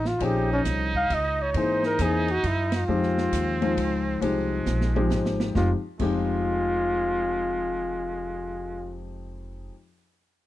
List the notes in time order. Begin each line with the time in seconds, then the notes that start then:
Already playing: A1
0.05 F4, snare
0.19 A#1 F3 C4 C#4 D#4 G#4, kick, ride
0.24 G4
0.53 C#4
0.65 C2, kick, snare, hi-hat pedal, ride
0.95 F5, kick
1.10 C#2 D#5, kick, ride
1.42 C#5
1.53 G#2 E3 A#3 C4 D#4, kick, ride
1.57 G#4 C5
1.83 A#4, snare
1.99 E2 E3 A#3 C4 D#4 G#4, kick, hi-hat pedal, ride
2.28 F#4, ride
2.43 F#2 E4, kick, ride
2.72 F4, snare, ride
2.87 F2 F3 G#3 C4 D#4 G4
3.03 snare
3.18 snare
3.32 D#2, kick, hi-hat pedal, ride
3.62 F3 G#3 C4 D#4 F4, ride
3.77 C#2, kick, ride
4.21 C2 F3 G#3 C4 D#4 G4, kick, ride
4.66 A#1, snare, hi-hat pedal
4.81 snare
4.95 F3 G#3 C4 D#4 G4, high tom
5.10 G#1, snare, hi-hat pedal
5.25 snare
5.40 snare
5.54 F1 F2 F3 G#3 D#4 F4 G4, kick, snare
5.99 F1 F2 F3 G#3 D#4 F4 G4, kick, crash